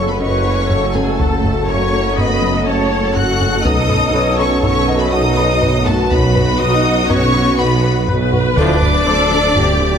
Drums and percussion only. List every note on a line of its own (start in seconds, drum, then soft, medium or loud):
0.70 taiko low medium
0.95 taiko low soft
1.20 taiko loud
1.44 taiko low medium
2.18 taiko low medium
3.16 taiko low medium
3.41 taiko low medium
3.65 taiko medium
3.90 taiko low medium
4.63 taiko low medium
5.62 taiko low medium
5.87 taiko low medium
6.11 taiko loud
6.36 taiko low medium
7.10 taiko low medium
8.08 taiko low medium
8.33 taiko low medium
8.57 taiko loud
8.82 taiko low medium
9.56 taiko low medium